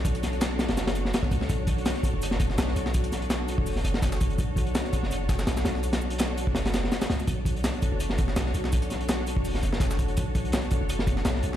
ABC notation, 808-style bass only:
X:1
M:4/4
L:1/16
Q:"Swing 16ths" 1/4=166
K:Bm
V:1 name="808-style bass" clef=bass
B,,,6- B,,, F,,,4- F,,, z2 C,,2 | B,,,4- B,,, z2 F,,,4- F,,, B,,,2 B,,,2- | B,,,6- B,,, F,,,3 F,,,6 | B,,,4- B,,, z2 F,,,4- F,,, B,,,2 B,,,2- |
B,,,6- B,,, F,,,4- F,,, z2 C,,2 | B,,,4- B,,, z2 F,,,4- F,,, B,,,2 B,,,2- | B,,,6- B,,, F,,,3 F,,,6 | B,,,4- B,,, z2 F,,,4- F,,, B,,,2 B,,,2 |]